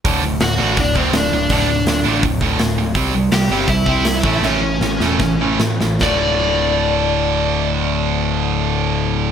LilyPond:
<<
  \new Staff \with { instrumentName = "Lead electric guitar" } { \time 4/4 \key a \dorian \tempo 4 = 160 r4 <fis' fis''>4 <d' d''>8 <c' c''>8 <d' d''>4 | <d' d''>2 r2 | r4 <g' g''>4 <e' e''>2 | <cis' cis''>2. r4 |
d''1~ | d''1 | }
  \new Staff \with { instrumentName = "Distorted electric guitar" } { \clef bass \time 4/4 \key a \dorian <d, a, d>8 <d, a,>8 <d, a,>8 <d, a, d>8 <d, a,>8 <d, a, d>8 <d, a,>8 <d, a,>8 | <d, a, d>8 <d, a,>8 <d, a,>8 <d, a, d>8 <d, a,>8 <d, a, d>8 <d, a,>8 <d, a,>8 | <c g c'>8 <c g>8 <c g>8 <c g c'>8 <c g>8 <c g c'>8 <c g>8 <a, e a>8 | <a, e a>8 <a, e>8 <a, e>8 <a, e a>8 <a, e>8 <a, e a>8 <a, e>8 <a, e>8 |
<d, a, d>1~ | <d, a, d>1 | }
  \new Staff \with { instrumentName = "Distorted electric guitar" } { \clef bass \time 4/4 \key a \dorian <d, a, d>8 <d, a,>8 <d, a,>8 <d, a, d>8 <d, a,>8 <d, a, d>8 <d, a,>8 <d, a,>8 | <d, a, d>8 <d, a,>8 <d, a,>8 <d, a, d>8 <d, a,>8 <d, a, d>8 <d, a,>8 <d, a,>8 | <c g c'>8 <c g>8 <c g>8 <c g c'>8 <c g>8 <c g c'>8 <c g>8 <a, e a>8 | <a, e a>8 <a, e>8 <a, e>8 <a, e a>8 <a, e>8 <a, e a>8 <a, e>8 <a, e>8 |
<d, a, d>1~ | <d, a, d>1 | }
  \new Staff \with { instrumentName = "Picked electric bass" } { \clef bass \time 4/4 \key a \dorian d,,4 d,,8 a,,8 d,,4 d,,8 d,,8 | d,,4 d,,8 a,,8 d,,4 d,,8 d,,8 | c,4 c,8 g,,8 c,4 c,8 a,,8 | a,,4 a,,8 e,,8 a,,4 a,,8 a,,8 |
d,,1~ | d,,1 | }
  \new DrumStaff \with { instrumentName = "Drums" } \drummode { \time 4/4 <hho bd>4 <hho sn>4 <hho bd>8 bd8 <hho sn>4 | <hho bd>4 <hho sn>4 <hho bd>8 bd8 <hho sn>4 | <hho bd>4 <hho sn>4 <hho bd>8 bd8 <hho sn>8 bd8 | sn4 sn8 sn8 <bd sn>4 sn8 sn8 |
<bd sn>4 r4 r4 r4 | r4 r4 r4 r4 | }
>>